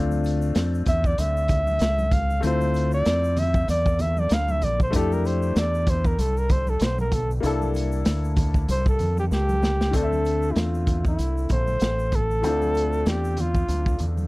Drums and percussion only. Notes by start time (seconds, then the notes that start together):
0.11 high conga, shaker
0.24 closed hi-hat, shaker
0.42 shaker
0.55 snare, closed hi-hat, shaker
0.74 shaker
0.86 kick, closed hi-hat, low conga, shaker
1.04 kick, shaker
1.18 closed hi-hat, high conga, shaker
1.37 shaker
1.48 kick, closed hi-hat, low conga, shaker
1.67 high conga, shaker
1.79 snare, closed hi-hat, shaker
1.98 high conga, shaker
2.11 kick, closed hi-hat, low conga, shaker
2.30 shaker
2.43 closed hi-hat, shaker
2.61 high conga, shaker
2.74 closed hi-hat, shaker
2.92 shaker
3.05 snare, closed hi-hat, shaker
3.24 shaker
3.36 closed hi-hat, low conga, shaker
3.54 kick, shaker
3.68 closed hi-hat, high conga, shaker
3.86 kick, shaker
3.99 closed hi-hat, low conga, shaker
4.17 high conga, shaker
4.29 snare, closed hi-hat, shaker
4.48 high conga, shaker
4.62 closed hi-hat, low conga, shaker
4.80 kick, shaker
4.93 kick, closed hi-hat, shaker
5.12 high conga, shaker
5.25 closed hi-hat, shaker
5.42 shaker
5.56 snare, closed hi-hat, shaker
5.75 shaker
5.87 kick, closed hi-hat, low conga, shaker
6.05 kick, shaker
6.19 closed hi-hat, high conga, shaker
6.37 shaker
6.49 kick, closed hi-hat, low conga, shaker
6.67 high conga, shaker
6.80 snare, closed hi-hat, shaker
6.98 high conga, shaker
7.12 kick, closed hi-hat, low conga, shaker
7.31 shaker
7.43 closed hi-hat, shaker
7.62 high conga, shaker
7.74 closed hi-hat, shaker
7.92 shaker
8.05 snare, closed hi-hat, shaker
8.24 shaker
8.36 kick, closed hi-hat, low conga, shaker
8.54 kick, shaker
8.68 closed hi-hat, high conga, shaker
8.86 kick, shaker
8.99 closed hi-hat, low conga, shaker
9.18 high conga, shaker
9.32 snare, shaker
9.49 high conga, shaker
9.62 snare, low conga, shaker
9.81 snare, shaker
9.93 kick, closed hi-hat, shaker
10.12 high conga, shaker
10.25 closed hi-hat, shaker
10.42 shaker
10.56 snare, closed hi-hat, shaker
10.75 shaker
10.87 kick, closed hi-hat, low conga, shaker
11.05 kick, shaker
11.19 closed hi-hat, high conga, shaker
11.37 shaker
11.49 kick, closed hi-hat, low conga, shaker
11.67 high conga, shaker
11.80 snare, closed hi-hat, shaker
11.99 shaker
12.12 kick, closed hi-hat, low conga, shaker
12.31 shaker
12.44 closed hi-hat, shaker
12.62 high conga, shaker
12.75 closed hi-hat, shaker
12.93 shaker
13.06 snare, closed hi-hat, shaker
13.25 shaker
13.37 closed hi-hat, low conga, shaker
13.55 kick, shaker
13.68 closed hi-hat, high conga, shaker
13.86 kick, shaker
13.99 closed hi-hat, low conga, shaker
14.18 high conga, shaker